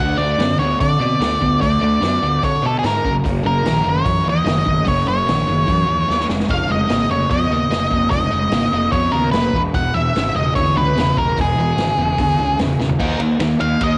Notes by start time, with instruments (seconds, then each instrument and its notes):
Already playing: distorted electric guitar D3 A3, lead electric guitar F#5
0.00 picked electric bass D2
0.18 picked electric bass D2, distorted electric guitar D3 A3, lead electric guitar D5
0.38 picked electric bass F#2, distorted electric guitar D3 B3, snare, open hi-hat
0.58 picked electric bass D2, distorted electric guitar D3 B3, lead electric guitar C#5
0.80 picked electric bass D3, distorted electric guitar D3 C4, lead electric guitar D5, kick, open hi-hat
1.00 picked electric bass B2, distorted electric guitar D3 C4
1.20 picked electric bass D2, distorted electric guitar D3 B3, snare, open hi-hat
1.40 picked electric bass D2, distorted electric guitar D3 B3, kick
1.61 picked electric bass D2, distorted electric guitar D3 A3, lead electric guitar D5, kick, open hi-hat
1.80 picked electric bass D2, distorted electric guitar D3 A3
2.01 picked electric bass F#2, distorted electric guitar D3 B3, snare, open hi-hat
2.22 picked electric bass D2, distorted electric guitar D3 B3
2.43 distorted electric guitar D3 C4, picked electric bass D3, lead electric guitar C#5, kick, open hi-hat
2.62 picked electric bass B2, distorted electric guitar D3 C4
2.66 lead electric guitar A4
2.79 lead electric guitar G#4
2.83 picked electric bass G#2, distorted electric guitar D3 B3, lead electric guitar A#4, snare, open hi-hat
3.05 picked electric bass F#1, distorted electric guitar F#2 C#3, kick
3.24 picked electric bass F#1, distorted electric guitar F#2 C#3, kick, open hi-hat
3.43 picked electric bass F#1, distorted electric guitar F#2 C#3, lead electric guitar A#4
3.64 picked electric bass A#1, distorted electric guitar F#2 D#3, snare, open hi-hat
3.84 picked electric bass F#1, distorted electric guitar F#2 D#3
3.89 lead electric guitar C#5
4.05 distorted electric guitar F#2 E3, picked electric bass F#2, kick, open hi-hat
4.24 picked electric bass D#2, distorted electric guitar F#2 E3
4.29 lead electric guitar D#5
4.45 picked electric bass F#1, distorted electric guitar F#2 D#3, snare, open hi-hat
4.65 picked electric bass F#1, distorted electric guitar F#2 D#3, kick
4.85 picked electric bass F#1, distorted electric guitar F#2 C#3, lead electric guitar C#5, kick, open hi-hat
5.06 picked electric bass F#1, distorted electric guitar F#2 C#3, lead electric guitar C#5
5.27 picked electric bass A#1, distorted electric guitar F#2 D#3, snare, open hi-hat
5.48 picked electric bass F#1, distorted electric guitar F#2 D#3
5.66 distorted electric guitar F#2 E3, picked electric bass F#2, kick, open hi-hat
5.87 picked electric bass D#2, distorted electric guitar F#2 E3
6.08 picked electric bass D#2, distorted electric guitar F#2 D#3, snare
6.20 snare
6.29 picked electric bass F1, distorted electric guitar C#3 G#3, snare
6.40 snare
6.49 picked electric bass F1, distorted electric guitar C#3 G#3, lead electric guitar F5, kick, open hi-hat
6.69 picked electric bass F1, distorted electric guitar C#3 G#3, lead electric guitar D#5
6.89 picked electric bass G#1, distorted electric guitar C#3 A#3, snare, open hi-hat
7.09 picked electric bass F1, distorted electric guitar C#3 A#3, lead electric guitar C#5
7.30 picked electric bass F2, distorted electric guitar C#3 B3, lead electric guitar D#5, kick, open hi-hat
7.49 picked electric bass D#2, distorted electric guitar C#3 B3
7.70 picked electric bass F1, distorted electric guitar C#3 A#3, snare, open hi-hat
7.90 picked electric bass F1, distorted electric guitar C#3 A#3, kick
8.10 picked electric bass F1, distorted electric guitar C#3 G#3, lead electric guitar D#5, kick, open hi-hat
8.30 picked electric bass F1, distorted electric guitar C#3 G#3
8.51 picked electric bass G#1, distorted electric guitar C#3 A#3, snare, open hi-hat
8.72 picked electric bass F1, distorted electric guitar C#3 A#3
8.92 picked electric bass F2, distorted electric guitar C#3 B3, lead electric guitar C#5, kick, open hi-hat
9.12 picked electric bass D#2, distorted electric guitar C#3 B3, lead electric guitar A#4
9.31 picked electric bass F1, distorted electric guitar C#3 A#3, lead electric guitar B4, snare, open hi-hat
9.53 picked electric bass E1, distorted electric guitar E2 B2, kick
9.74 picked electric bass E1, distorted electric guitar E2 B2, lead electric guitar F#5, kick, open hi-hat
9.94 picked electric bass E1, distorted electric guitar E2 B2, lead electric guitar E5
10.15 picked electric bass G#1, distorted electric guitar E2 C#3, snare, open hi-hat
10.35 picked electric bass E1, distorted electric guitar E2 C#3, lead electric guitar D#5
10.55 distorted electric guitar E2 D3, picked electric bass E2, lead electric guitar C#5, kick, open hi-hat
10.76 picked electric bass C#2, distorted electric guitar E2 D3, lead electric guitar B4
10.95 picked electric bass E1, distorted electric guitar E2 C#3, snare, open hi-hat
11.16 picked electric bass E1, distorted electric guitar E2 C#3, lead electric guitar A#4, kick
11.37 picked electric bass E1, distorted electric guitar E2 B2, lead electric guitar G#4, kick, open hi-hat
11.56 picked electric bass E1, distorted electric guitar E2 B2
11.76 picked electric bass G#1, distorted electric guitar E2 C#3, snare, open hi-hat
11.97 picked electric bass E1, distorted electric guitar E2 C#3
12.18 distorted electric guitar E2 D3, picked electric bass E2, kick, open hi-hat
12.39 picked electric bass C#2, distorted electric guitar E2 D3
12.59 picked electric bass E1, distorted electric guitar E2 C#3, snare, open hi-hat
12.79 picked electric bass E1, distorted electric guitar E2 C#3, snare
12.89 floor tom
12.99 picked electric bass D#2, distorted electric guitar D#3 A#3 D#4, kick, crash
13.19 picked electric bass D#2, distorted electric guitar D#3 A#3, ride
13.39 picked electric bass D#2, distorted electric guitar D#3 A#3, snare, ride
13.59 picked electric bass D#2, distorted electric guitar D#3 A#3, lead electric guitar F5, ride
13.81 picked electric bass D#2, distorted electric guitar D#3 A#3, lead electric guitar D#5, kick, ride